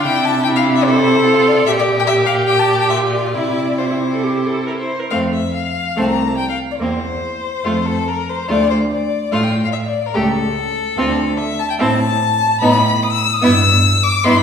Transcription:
Already playing: D4
0.02 C3 E4 G5
0.25 A5
0.44 E4 G5
0.56 F5
0.76 E5
0.84 E4 A4 C5
1.28 F4
1.48 D5
1.66 A#2 G4 E5
1.79 D5
2.00 G5
2.07 G4 E5
2.26 F5
2.47 G4 G5
2.59 A5
2.80 G5
2.89 F4 E5
3.12 D5
3.32 C3 E4 D5
3.78 E4 F4 C5
3.91 E4
4.14 A4
4.24 G4
4.47 A4
4.67 A#4
4.78 C5
5.00 A#4
5.11 F2 A3 C4 F5
5.33 E5
5.54 F5
5.96 C2 A3 C4 A5
6.08 A#5
6.28 A5
6.37 G5
6.49 F5
6.71 D5
6.80 E2 A#3 C4 C5
7.64 F2 A3 F4
7.86 A4
8.08 A#4
8.29 C5
8.48 D2 A3 F4 D5
8.70 C5
8.91 D5
9.31 A2 A3 F4 F5
9.43 G5
9.65 F5
9.72 E5
9.86 D5
10.06 A#4
10.14 C#2 A3 G4 A4
10.97 D2 C4 F4
11.37 E5
11.60 A5
11.70 G5
11.79 A2 C4 E4 A5
12.60 A2 B3 D#4 B5
13.03 D#6
13.12 E6
13.33 D#6
13.42 G2 B3 E4 E6
14.03 D6
14.24 G2 B3 E4 C6
14.38 B5

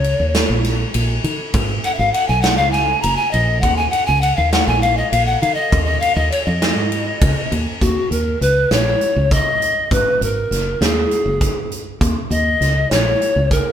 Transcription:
Already playing: C#2 C#5
0.04 ride
0.20 D#2
0.35 snare, ride
0.50 A#1
0.64 snare, ride
0.94 A#1, ride
1.24 D#3, ride
1.54 G#1, kick, ride
1.84 F#5, ride
1.94 E5 F5
1.99 G#1
2.12 F#5, ride
2.28 B1 G#5
2.42 F#5, snare, ride
2.57 C#2 F5
2.71 G#5, snare, ride
3.02 F#1 A#5, ride
3.16 G#5
3.31 A#1 D#5, ride
3.61 D#2 F#5, kick, ride
3.77 G#5
3.90 F#5, ride
4.06 C#2 G#5
4.21 F#5, ride
4.36 D#2 F5
4.52 F#5, snare, ride
4.67 A#1 G#5
4.82 F5, ride
4.97 D#5
5.11 A#1 F5, ride
5.26 F#5
5.41 D#3 F5, ride
5.54 D#5
5.72 D#2, kick, ride
5.84 D#5
6.00 F5, ride
6.15 D#2 D#5
6.31 C#5, ride
6.46 F2 D#5
6.62 snare, ride
6.76 G#2
6.92 ride
7.21 C#2, kick, ride
7.52 D#2, ride
7.81 D#2 F#4, kick, closed hi-hat
8.11 D#2 A#4, closed hi-hat
8.41 C#2 B4, closed hi-hat
8.71 A#1 C#5, snare, closed hi-hat
9.01 closed hi-hat
9.16 C#2
9.31 D#5, kick, closed hi-hat
9.62 closed hi-hat
9.91 G#1 B4, kick, closed hi-hat
10.21 G#1 A#4, closed hi-hat
10.51 F#1, snare, closed hi-hat
10.81 D#2 G#4, snare, closed hi-hat
11.11 closed hi-hat
11.26 F#1
11.41 kick, closed hi-hat
11.71 closed hi-hat
12.01 D#2, kick, closed hi-hat
12.31 D#2 D#5, closed hi-hat
12.61 C#2, snare, closed hi-hat
12.91 A#1 C#5, snare, closed hi-hat
13.21 closed hi-hat
13.36 C#2
13.51 A#4, kick, closed hi-hat

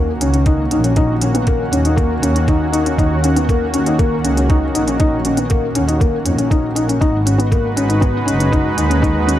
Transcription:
Already playing: D#2 D#3 A#3 C#4 F#4
0.20 C#2 C#4, closed hi-hat
0.33 C#4, closed hi-hat
0.46 D#4, kick, closed hi-hat
0.71 A#1 D#4, closed hi-hat
0.84 C#4, closed hi-hat
0.96 D#4, kick, closed hi-hat
1.22 C#4, closed hi-hat
1.34 B3, closed hi-hat
1.47 A#3, kick, closed hi-hat
1.72 D#2 C#4, closed hi-hat
1.85 D#4, closed hi-hat
1.96 A#3, kick, closed hi-hat
2.22 D#2 C#4, closed hi-hat
2.35 C#4, closed hi-hat
2.48 D#4, kick, closed hi-hat
2.72 D#4, closed hi-hat
2.85 C#4, closed hi-hat
2.98 D#2 D#4, kick, closed hi-hat
3.24 C#4, closed hi-hat
3.36 B3, closed hi-hat
3.49 A#3, kick, closed hi-hat
3.74 D#2 C#4, closed hi-hat
3.86 D#4, closed hi-hat
3.99 A#3, kick, closed hi-hat
4.24 C#2 C#4, closed hi-hat
4.37 C#4, closed hi-hat
4.50 D#4, kick, closed hi-hat
4.74 A#1 D#4, closed hi-hat
4.87 C#4, closed hi-hat
4.99 D#4, kick, closed hi-hat
5.25 C#4, closed hi-hat
5.37 B3, closed hi-hat
5.50 A#3, kick, closed hi-hat
5.75 D#2 C#4, closed hi-hat
5.88 D#4, closed hi-hat
6.00 A#3, kick, closed hi-hat
6.25 F2 C#4, closed hi-hat
6.38 A#1 C#4, closed hi-hat
6.50 D#4, kick, closed hi-hat
6.75 D#4, closed hi-hat
6.88 C#4, closed hi-hat
7.01 G#1 G#3 D#4 F#4 B4, kick, closed hi-hat
7.26 C#4, closed hi-hat
7.38 B3, closed hi-hat
7.51 A#3, kick, closed hi-hat
7.76 G#1 C#4, closed hi-hat
7.88 D#4, closed hi-hat
8.01 B3, kick, closed hi-hat
8.25 F#1 C#4, closed hi-hat
8.39 C#4, closed hi-hat
8.52 D#4, kick, closed hi-hat
8.77 D#2 D#4, closed hi-hat
8.90 C#4, closed hi-hat
9.02 D#4, kick, closed hi-hat
9.27 C#4, closed hi-hat

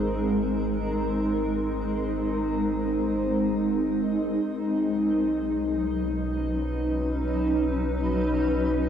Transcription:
Already playing: G#1 G#3 C4 D#4 A#4
4.44 B1 F#3
4.83 C#4
5.11 B4

